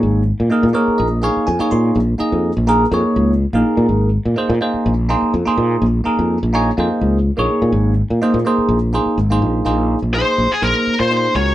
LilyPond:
<<
  \new Staff \with { instrumentName = "Lead electric guitar" } { \time 4/4 \key bes \minor \tempo 4 = 125 r1 | r1 | r1 | r1 |
r1 | r4 c''8. aes'16 bes'8. c''8. des''8 | }
  \new Staff \with { instrumentName = "Tine electric piano" } { \time 4/4 \key bes \minor << { r4. des''8 ees''8 f''8 aes''8 c'''8 | r1 | r1 | r1 |
r1 | r1 | } \\ { <bes ees' aes' des''>8 r8 <bes ees' aes' bes'>16 r16 <bes ees' aes' bes'>8. r16 <bes ees' aes' des''>8 r16 <bes ees' aes' des''>8. | r8 <bes ees' aes' ees''>8. r16 <bes ees' aes' bes'>16 r16 <bes ees' aes' des''>8. r8 <bes ees' aes' bes'>8.~ | <bes ees' aes' bes'>8 r8 <bes ees' aes' c''>16 r16 <bes ees' aes' c''>8. r16 <bes ees' aes' c''>8 r16 <bes ees' aes' c''>8. | r8 <bes ees' aes' bes'>8. r16 <bes ees' aes' des''>16 r16 <bes ees' aes' c''>8. r8 <bes ees' aes' des''>8.~ |
<bes ees' aes' des''>8 r8 <bes ees' aes' c''>16 r16 <bes ees' aes' c''>8. r16 <bes ees' aes' c''>8 r16 <bes ees' aes' c''>8. | <bes ees' aes' c''>8. r16 <bes ees' aes' ees''>8. r16 <bes ees' aes' c''>8. r16 <bes ees' aes' c''>8 <aes des' ges' bes'>8 | } >> }
  \new Staff \with { instrumentName = "Fretless electric bass" } { \clef bass \time 4/4 \key bes \minor aes,,8. bes,16 r16 bes,16 r8 bes,,8. r16 f,16 r16 bes,8 | bes,,8 r16 f,8 bes,,8. f,16 r16 des,8. bes,,16 r16 bes,16 | aes,,8. bes,16 r16 bes,16 r8 bes,,8. r16 f,16 r16 bes,8 | bes,,8 r16 f,8 bes,,8. f,16 r16 des,8. bes,,16 r16 bes,16 |
aes,,8. bes,16 r16 bes,16 r8 bes,,8. r16 aes,,8 bes,,8 | bes,,8. bes,,8 r16 bes,,16 r16 bes,,16 r8 bes,8. des,8 | }
>>